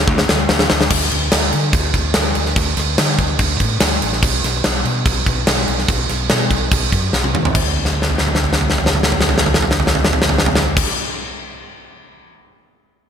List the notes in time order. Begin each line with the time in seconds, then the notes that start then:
0.08 D2, kick
0.18 snare
0.29 D2, snare
0.49 D2, snare
0.59 snare
0.70 D2, snare
0.81 snare
0.90 D2, kick, crash
1.11 D2, crash
1.32 D2, snare, crash
1.53 D3, crash
1.73 D2, kick, crash
1.94 D2, kick, crash
2.14 D2, snare, crash
2.35 D2, crash
2.46 snare
2.56 D2, kick, crash
2.77 D2, snare, crash
2.98 D3, snare, crash
3.18 D2, kick, crash
3.39 D2, kick, crash
3.60 A2, kick, crash
3.80 D2, snare, crash
4.02 A1, crash
4.13 snare
4.23 B1, kick, crash
4.44 B1, snare, crash
4.64 B1, snare, crash
4.85 B2, crash
5.06 B1, kick, crash
5.26 B1, kick, crash
5.47 B1, snare, crash
5.68 B1, crash
5.79 snare
5.88 B1, kick, crash
6.09 B1, snare, crash
6.30 B2, snare, crash
6.51 B1, kick, crash
6.71 B1, kick, crash
6.92 F#2, kick, crash
7.13 B1, snare
7.24 high tom
7.34 D#2, mid tom
7.45 floor tom
7.55 D2, kick, crash
7.76 floor tom
7.85 snare
7.93 floor tom
8.02 snare
8.10 floor tom
8.18 snare
8.27 floor tom
8.35 snare
8.44 floor tom
8.53 snare
8.61 floor tom
8.70 snare
8.78 floor tom
8.86 snare
8.95 floor tom
9.03 snare
9.12 floor tom
9.21 snare
9.29 floor tom
9.38 snare
9.46 floor tom
9.54 snare
9.62 floor tom
9.71 snare
9.80 floor tom
9.87 snare
9.95 floor tom
10.05 snare
10.13 floor tom
10.22 snare
10.29 floor tom
10.38 snare
10.46 floor tom
10.55 snare
10.77 kick, crash